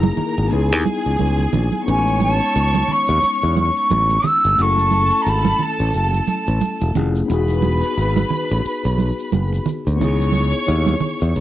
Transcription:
0.00 0.51 A#3 medium
0.00 0.50 D#4 medium
0.00 0.52 E4 medium
0.00 0.53 G#4 medium
0.00 0.50 A#4 medium
0.00 0.50 A#5 medium
0.00 high conga medium
0.17 muted fingered electric bass stroke soft
0.17 low conga medium
0.38 0.48 G#1 medium
0.48 1.82 B3 medium
0.48 1.84 D#4 medium
0.48 1.84 G#4 medium
0.48 1.84 G#5 medium
0.48 muted conga soft
0.53 0.72 C#2 medium
0.53 1.85 E4 medium
0.53 1.87 G#4 medium
0.72 0.83 D#2 medium
0.86 high conga medium
1.06 1.16 C#2 medium
1.19 1.46 C#2 medium
1.19 high conga medium
1.39 muted conga soft
1.53 1.69 A#1 medium
1.53 low conga medium
1.72 high conga medium
1.83 4.52 B3 medium
1.83 4.54 C#4 medium
1.83 4.20 C#5 medium
1.83 4.20 C#6 loud
1.88 2.39 A1 loud
1.88 4.55 D#4 medium
1.88 1.97 G4 medium
1.88 2.20 G#5 medium
1.88 muted conga soft
1.88 shaker medium
1.98 4.60 G#3 medium
2.07 shaker soft
2.20 2.93 A5 medium
2.20 high conga medium
2.20 shaker soft
2.41 shaker soft
2.56 2.81 C#2 medium
2.56 shaker medium
2.74 muted conga soft
2.74 high conga medium
2.74 shaker soft
2.88 3.58 C#6 loud
2.88 low conga medium
3.07 3.20 D#2 medium
3.07 shaker soft
3.22 muted fingered electric bass stroke soft
3.22 muted conga soft
3.22 shaker medium
3.42 3.69 E2 medium
3.42 shaker soft
3.56 4.28 C#6 loud
3.56 high conga medium
3.56 shaker soft
3.76 shaker soft
3.90 4.17 A1 medium
3.90 high conga medium
3.90 shaker medium
4.10 muted conga soft
4.10 shaker soft
4.24 4.63 E6 medium
4.24 low conga medium
4.24 shaker soft
4.44 4.55 G1 medium
4.44 shaker soft
4.54 6.89 A3 medium
4.54 6.91 C#4 medium
4.54 6.91 A4 medium
4.58 5.10 F#1 medium
4.58 6.92 E4 medium
4.58 6.91 A5 loud
4.58 5.23 C#6 loud
4.58 shaker medium
4.62 6.93 A4 medium
4.77 muted conga soft
4.77 shaker soft
4.91 high conga medium
4.91 shaker soft
5.11 shaker soft
5.22 5.30 A#5 medium
5.27 5.52 G#1 medium
5.27 5.64 B5 medium
5.27 shaker medium
5.45 muted conga soft
5.45 high conga medium
5.45 shaker soft
5.59 5.95 A5 medium
5.59 low conga medium
5.79 5.91 A1 medium
5.79 shaker soft
5.93 6.20 F#1 medium
5.93 6.92 A5 medium
5.93 muted conga soft
5.93 shaker medium
6.13 muted conga soft
6.13 shaker soft
6.27 high conga medium
6.27 shaker soft
6.47 6.58 A1 medium
6.47 shaker soft
6.61 muted conga soft
6.61 high conga medium
6.61 shaker medium
6.81 6.92 E1 loud
6.81 muted conga soft
6.81 shaker soft
6.94 7.21 F1 medium
6.94 7.28 A3 medium
6.94 7.29 C#4 medium
6.94 7.30 E4 medium
6.94 low conga medium
6.94 shaker medium
6.98 7.30 G#4 medium
7.16 shaker soft
7.26 9.94 B3 medium
7.26 9.96 D#4 medium
7.26 9.62 B4 medium
7.26 9.62 B5 medium
7.30 7.81 E1 loud
7.30 9.97 F#4 medium
7.30 9.98 G#4 medium
7.30 muted conga soft
7.30 shaker medium
7.48 muted conga soft
7.48 shaker soft
7.62 high conga medium
7.62 shaker soft
7.83 shaker soft
7.98 8.23 G#1 medium
7.98 shaker medium
8.16 high conga medium
8.16 shaker soft
8.30 low conga medium
8.50 8.62 A1 medium
8.50 shaker soft
8.65 shaker medium
8.85 9.10 B1 medium
8.85 shaker medium
8.98 high conga medium
8.98 shaker soft
9.19 shaker soft
9.32 9.58 F#1 medium
9.32 high conga medium
9.32 shaker medium
9.53 muted conga soft
9.53 shaker soft
9.66 low conga medium
9.66 shaker medium
9.87 10.01 D2 medium
9.87 shaker soft
9.96 11.40 B3 medium
9.96 11.40 D#4 medium
9.96 11.40 C#5 medium
9.96 11.40 C#6 loud
10.01 10.52 C#2 loud
10.01 11.40 E4 medium
10.01 11.40 G#4 medium
10.01 low conga medium
10.01 shaker medium
10.19 muted conga soft
10.19 shaker medium
10.32 high conga medium
10.32 shaker soft
10.54 shaker soft
10.67 10.94 D#2 medium
10.67 muted conga soft
10.67 shaker medium
10.87 high conga medium
10.87 shaker soft
11.00 low conga medium
11.21 11.32 E2 medium
11.21 shaker soft
11.36 11.40 C#2 medium
11.36 shaker medium

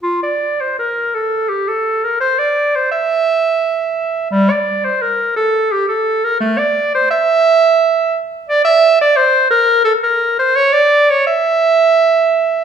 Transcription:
0.03 0.22 F4 medium
0.23 0.62 D5 medium
0.60 0.78 C5 medium
0.79 1.16 A#4 medium
1.14 1.50 A4 medium
1.49 1.70 G4 medium
1.68 2.05 A4 medium
2.04 2.20 A#4 medium
2.20 2.40 C5 medium
2.39 2.77 D5 medium
2.75 2.91 C5 medium
2.91 4.28 E5 medium
4.30 4.52 G3 medium
4.50 4.86 D5 medium
4.84 5.03 C5 medium
5.02 5.36 A#4 medium
5.36 5.73 A4 medium
5.72 5.87 G4 medium
5.88 6.26 A4 medium
6.24 6.39 A#4 medium
6.40 6.60 A3 medium
6.58 6.94 D5 medium
6.94 7.10 C5 medium
7.11 8.19 E5 loud
8.48 8.64 D5 loud
8.65 8.99 E5 loud
9.01 9.18 D5 medium
9.16 9.50 C5 loud
9.50 9.84 A#4 loud
9.85 9.93 A4 medium
10.03 10.38 A#4 medium
10.39 10.57 C5 medium
10.56 10.74 C#5 loud
10.73 11.12 D5 medium
11.10 11.26 C#5 medium
11.27 12.64 E5 loud

